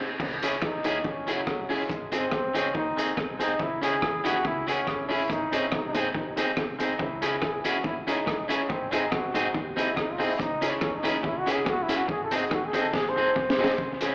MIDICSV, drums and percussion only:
0, 0, Header, 1, 2, 480
1, 0, Start_track
1, 0, Key_signature, 4, "minor"
1, 0, Tempo, 424328
1, 227, Time_signature, 4, 2, 24, 8
1, 16005, End_track
2, 0, Start_track
2, 0, Title_t, "Drums"
2, 224, Note_on_c, 9, 49, 92
2, 225, Note_on_c, 9, 36, 112
2, 338, Note_off_c, 9, 36, 0
2, 338, Note_off_c, 9, 49, 0
2, 482, Note_on_c, 9, 42, 100
2, 595, Note_off_c, 9, 42, 0
2, 697, Note_on_c, 9, 37, 120
2, 704, Note_on_c, 9, 36, 113
2, 811, Note_off_c, 9, 37, 0
2, 817, Note_off_c, 9, 36, 0
2, 954, Note_on_c, 9, 42, 81
2, 1067, Note_off_c, 9, 42, 0
2, 1182, Note_on_c, 9, 36, 105
2, 1295, Note_off_c, 9, 36, 0
2, 1445, Note_on_c, 9, 42, 82
2, 1558, Note_off_c, 9, 42, 0
2, 1663, Note_on_c, 9, 37, 115
2, 1664, Note_on_c, 9, 36, 100
2, 1776, Note_off_c, 9, 37, 0
2, 1777, Note_off_c, 9, 36, 0
2, 1923, Note_on_c, 9, 46, 51
2, 2036, Note_off_c, 9, 46, 0
2, 2144, Note_on_c, 9, 36, 119
2, 2145, Note_on_c, 9, 44, 65
2, 2257, Note_off_c, 9, 36, 0
2, 2258, Note_off_c, 9, 44, 0
2, 2399, Note_on_c, 9, 42, 100
2, 2512, Note_off_c, 9, 42, 0
2, 2618, Note_on_c, 9, 37, 121
2, 2625, Note_on_c, 9, 36, 107
2, 2731, Note_off_c, 9, 37, 0
2, 2739, Note_off_c, 9, 36, 0
2, 2886, Note_on_c, 9, 42, 91
2, 2999, Note_off_c, 9, 42, 0
2, 3107, Note_on_c, 9, 36, 109
2, 3220, Note_off_c, 9, 36, 0
2, 3375, Note_on_c, 9, 42, 94
2, 3489, Note_off_c, 9, 42, 0
2, 3589, Note_on_c, 9, 36, 112
2, 3592, Note_on_c, 9, 37, 119
2, 3702, Note_off_c, 9, 36, 0
2, 3705, Note_off_c, 9, 37, 0
2, 3851, Note_on_c, 9, 42, 89
2, 3964, Note_off_c, 9, 42, 0
2, 4067, Note_on_c, 9, 36, 114
2, 4180, Note_off_c, 9, 36, 0
2, 4330, Note_on_c, 9, 42, 100
2, 4444, Note_off_c, 9, 42, 0
2, 4550, Note_on_c, 9, 37, 117
2, 4551, Note_on_c, 9, 36, 105
2, 4664, Note_off_c, 9, 36, 0
2, 4664, Note_off_c, 9, 37, 0
2, 4811, Note_on_c, 9, 42, 91
2, 4924, Note_off_c, 9, 42, 0
2, 5032, Note_on_c, 9, 36, 113
2, 5145, Note_off_c, 9, 36, 0
2, 5298, Note_on_c, 9, 42, 89
2, 5411, Note_off_c, 9, 42, 0
2, 5514, Note_on_c, 9, 36, 109
2, 5518, Note_on_c, 9, 37, 101
2, 5627, Note_off_c, 9, 36, 0
2, 5631, Note_off_c, 9, 37, 0
2, 5776, Note_on_c, 9, 46, 49
2, 5889, Note_off_c, 9, 46, 0
2, 5992, Note_on_c, 9, 36, 121
2, 5995, Note_on_c, 9, 44, 65
2, 6106, Note_off_c, 9, 36, 0
2, 6108, Note_off_c, 9, 44, 0
2, 6253, Note_on_c, 9, 42, 96
2, 6366, Note_off_c, 9, 42, 0
2, 6467, Note_on_c, 9, 37, 114
2, 6473, Note_on_c, 9, 36, 110
2, 6580, Note_off_c, 9, 37, 0
2, 6586, Note_off_c, 9, 36, 0
2, 6726, Note_on_c, 9, 42, 89
2, 6839, Note_off_c, 9, 42, 0
2, 6951, Note_on_c, 9, 36, 112
2, 7064, Note_off_c, 9, 36, 0
2, 7208, Note_on_c, 9, 42, 98
2, 7321, Note_off_c, 9, 42, 0
2, 7430, Note_on_c, 9, 37, 113
2, 7432, Note_on_c, 9, 36, 110
2, 7543, Note_off_c, 9, 37, 0
2, 7545, Note_off_c, 9, 36, 0
2, 7689, Note_on_c, 9, 42, 84
2, 7802, Note_off_c, 9, 42, 0
2, 7912, Note_on_c, 9, 36, 120
2, 8025, Note_off_c, 9, 36, 0
2, 8168, Note_on_c, 9, 42, 102
2, 8281, Note_off_c, 9, 42, 0
2, 8389, Note_on_c, 9, 37, 126
2, 8395, Note_on_c, 9, 36, 116
2, 8503, Note_off_c, 9, 37, 0
2, 8508, Note_off_c, 9, 36, 0
2, 8651, Note_on_c, 9, 42, 91
2, 8764, Note_off_c, 9, 42, 0
2, 8873, Note_on_c, 9, 36, 102
2, 8986, Note_off_c, 9, 36, 0
2, 9139, Note_on_c, 9, 42, 91
2, 9252, Note_off_c, 9, 42, 0
2, 9357, Note_on_c, 9, 36, 110
2, 9362, Note_on_c, 9, 37, 113
2, 9470, Note_off_c, 9, 36, 0
2, 9475, Note_off_c, 9, 37, 0
2, 9620, Note_on_c, 9, 42, 87
2, 9733, Note_off_c, 9, 42, 0
2, 9839, Note_on_c, 9, 36, 108
2, 9952, Note_off_c, 9, 36, 0
2, 10096, Note_on_c, 9, 42, 94
2, 10209, Note_off_c, 9, 42, 0
2, 10316, Note_on_c, 9, 37, 127
2, 10319, Note_on_c, 9, 36, 118
2, 10430, Note_off_c, 9, 37, 0
2, 10432, Note_off_c, 9, 36, 0
2, 10576, Note_on_c, 9, 42, 94
2, 10689, Note_off_c, 9, 42, 0
2, 10798, Note_on_c, 9, 36, 112
2, 10911, Note_off_c, 9, 36, 0
2, 11064, Note_on_c, 9, 42, 86
2, 11177, Note_off_c, 9, 42, 0
2, 11279, Note_on_c, 9, 36, 106
2, 11279, Note_on_c, 9, 37, 116
2, 11392, Note_off_c, 9, 36, 0
2, 11392, Note_off_c, 9, 37, 0
2, 11542, Note_on_c, 9, 46, 51
2, 11655, Note_off_c, 9, 46, 0
2, 11760, Note_on_c, 9, 36, 110
2, 11764, Note_on_c, 9, 44, 71
2, 11873, Note_off_c, 9, 36, 0
2, 11877, Note_off_c, 9, 44, 0
2, 12013, Note_on_c, 9, 42, 97
2, 12126, Note_off_c, 9, 42, 0
2, 12231, Note_on_c, 9, 37, 121
2, 12238, Note_on_c, 9, 36, 113
2, 12344, Note_off_c, 9, 37, 0
2, 12351, Note_off_c, 9, 36, 0
2, 12495, Note_on_c, 9, 42, 93
2, 12608, Note_off_c, 9, 42, 0
2, 12715, Note_on_c, 9, 36, 112
2, 12828, Note_off_c, 9, 36, 0
2, 12978, Note_on_c, 9, 42, 92
2, 13091, Note_off_c, 9, 42, 0
2, 13193, Note_on_c, 9, 37, 114
2, 13195, Note_on_c, 9, 36, 104
2, 13306, Note_off_c, 9, 37, 0
2, 13308, Note_off_c, 9, 36, 0
2, 13451, Note_on_c, 9, 42, 87
2, 13564, Note_off_c, 9, 42, 0
2, 13674, Note_on_c, 9, 36, 125
2, 13787, Note_off_c, 9, 36, 0
2, 13928, Note_on_c, 9, 42, 108
2, 14041, Note_off_c, 9, 42, 0
2, 14153, Note_on_c, 9, 37, 126
2, 14155, Note_on_c, 9, 36, 116
2, 14266, Note_off_c, 9, 37, 0
2, 14268, Note_off_c, 9, 36, 0
2, 14410, Note_on_c, 9, 42, 85
2, 14523, Note_off_c, 9, 42, 0
2, 14633, Note_on_c, 9, 36, 113
2, 14634, Note_on_c, 9, 38, 62
2, 14746, Note_off_c, 9, 36, 0
2, 14747, Note_off_c, 9, 38, 0
2, 15112, Note_on_c, 9, 36, 107
2, 15226, Note_off_c, 9, 36, 0
2, 15271, Note_on_c, 9, 38, 97
2, 15384, Note_off_c, 9, 38, 0
2, 15430, Note_on_c, 9, 38, 97
2, 15543, Note_off_c, 9, 38, 0
2, 15591, Note_on_c, 9, 36, 115
2, 15704, Note_off_c, 9, 36, 0
2, 15845, Note_on_c, 9, 42, 99
2, 15958, Note_off_c, 9, 42, 0
2, 16005, End_track
0, 0, End_of_file